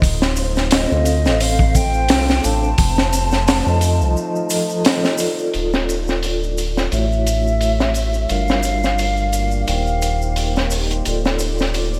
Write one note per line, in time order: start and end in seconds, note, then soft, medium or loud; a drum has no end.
0.00 0.87 D1 medium
0.00 5.50 A3 medium
0.00 2.75 C4 medium
0.00 5.49 F4 medium
0.00 5.50 C5 medium
0.00 kick loud
0.00 open hi-hat medium
0.04 maracas soft
0.22 snare medium
0.22 maracas soft
0.36 open hi-hat medium
0.36 maracas medium
0.56 snare soft
0.56 maracas soft
0.71 1.43 D#5 medium
0.71 snare loud
0.71 open hi-hat medium
0.71 maracas soft
0.89 1.28 D2 medium
0.89 2.39 C4 medium
0.89 2.39 A4 medium
0.89 2.40 C5 medium
0.89 2.40 F5 medium
0.89 maracas soft
1.05 open hi-hat medium
1.05 maracas medium
1.25 2.12 A1 medium
1.25 snare soft
1.25 maracas soft
1.40 1.77 F5 loud
1.40 open hi-hat medium
1.40 maracas soft
1.59 kick loud
1.59 maracas soft
1.75 2.46 G5 loud
1.75 kick medium
1.75 open hi-hat medium
1.75 maracas medium
1.94 maracas soft
2.09 2.40 C2 medium
2.09 snare loud
2.09 open hi-hat medium
2.09 maracas soft
2.28 snare medium
2.28 maracas soft
2.43 2.75 A1 medium
2.43 2.62 D4 medium
2.43 2.63 A4 medium
2.43 2.63 C5 medium
2.43 2.63 F5 loud
2.43 4.85 A5 loud
2.43 open hi-hat medium
2.43 maracas medium
2.63 maracas soft
2.77 3.63 F1 medium
2.77 5.51 D#4 medium
2.77 kick loud
2.77 open hi-hat medium
2.77 maracas soft
2.97 snare medium
2.97 maracas soft
3.13 open hi-hat medium
3.13 maracas medium
3.31 snare soft
3.31 maracas soft
3.48 snare loud
3.48 open hi-hat medium
3.48 maracas medium
3.65 4.03 F2 medium
3.65 4.46 F3 medium
3.65 4.47 F4 medium
3.65 4.48 A4 medium
3.65 4.48 D#5 medium
3.65 maracas soft
3.81 open hi-hat medium
3.81 maracas medium
4.01 4.16 C2 medium
4.01 maracas soft
4.17 maracas soft
4.36 maracas soft
4.50 5.15 F3 medium
4.50 5.16 F4 medium
4.50 5.16 A4 medium
4.50 5.16 D#5 medium
4.50 open hi-hat medium
4.50 maracas medium
4.69 maracas soft
4.85 snare loud
4.85 open hi-hat medium
4.85 maracas soft
5.04 snare soft
5.04 maracas soft
5.18 5.51 F4 medium
5.18 5.53 A4 medium
5.18 5.55 D5 loud
5.18 open hi-hat medium
5.18 maracas medium
5.39 maracas soft
5.52 6.89 D1 medium
5.52 8.26 A3 medium
5.52 6.90 D4 medium
5.52 6.87 F4 medium
5.52 6.90 F4 medium
5.52 6.88 A4 medium
5.52 6.90 D5 medium
5.52 open hi-hat medium
5.52 maracas soft
5.73 snare soft
5.73 maracas soft
5.89 open hi-hat soft
5.89 maracas medium
6.08 snare soft
6.08 maracas soft
6.23 open hi-hat medium
6.23 maracas soft
6.43 maracas soft
6.58 open hi-hat medium
6.58 maracas medium
6.77 snare soft
6.77 maracas soft
6.90 8.27 A1 medium
6.90 8.25 A3 medium
6.90 8.28 E4 medium
6.90 8.25 E4 medium
6.90 8.28 F#4 medium
6.90 8.26 F#4 medium
6.90 8.27 C#5 medium
6.90 8.26 C#5 medium
6.90 8.31 E5 loud
6.90 open hi-hat medium
6.90 maracas soft
7.12 maracas soft
7.26 open hi-hat medium
7.26 maracas medium
7.47 maracas soft
7.61 open hi-hat medium
7.61 maracas soft
7.80 snare soft
7.80 maracas soft
7.94 open hi-hat medium
7.94 maracas medium
8.14 maracas soft
8.28 9.65 G1 medium
8.28 9.63 G3 medium
8.28 11.03 A#3 medium
8.28 9.63 D4 medium
8.28 9.64 F4 medium
8.28 9.66 F4 medium
8.28 11.03 G4 medium
8.28 9.64 A#4 medium
8.28 9.66 D5 medium
8.28 9.67 F5 loud
8.28 open hi-hat medium
8.28 maracas soft
8.48 snare soft
8.48 maracas soft
8.63 open hi-hat medium
8.63 maracas medium
8.83 snare soft
8.83 maracas soft
8.98 open hi-hat medium
8.98 maracas soft
9.17 maracas soft
9.33 open hi-hat medium
9.33 maracas medium
9.51 maracas soft
9.66 11.03 D#1 medium
9.66 11.01 D#4 medium
9.66 11.04 D#4 medium
9.66 11.02 A#4 medium
9.66 11.04 C5 medium
9.66 11.02 C5 medium
9.66 10.67 F5 medium
9.66 11.02 G5 medium
9.66 open hi-hat medium
9.66 maracas soft
9.87 maracas soft
10.02 open hi-hat medium
10.02 maracas medium
10.22 maracas soft
10.36 open hi-hat medium
10.36 maracas soft
10.56 snare soft
10.56 maracas soft
10.71 open hi-hat medium
10.71 maracas medium
10.90 closed hi-hat soft
10.90 maracas soft
11.03 12.00 D1 medium
11.03 12.00 A3 medium
11.03 12.00 D4 medium
11.03 12.00 F4 medium
11.03 12.00 A4 medium
11.03 12.00 D5 medium
11.03 open hi-hat medium
11.03 maracas soft
11.25 snare soft
11.25 maracas soft
11.39 open hi-hat medium
11.39 maracas medium
11.58 snare soft
11.58 maracas soft
11.74 open hi-hat medium
11.74 maracas soft
11.93 maracas soft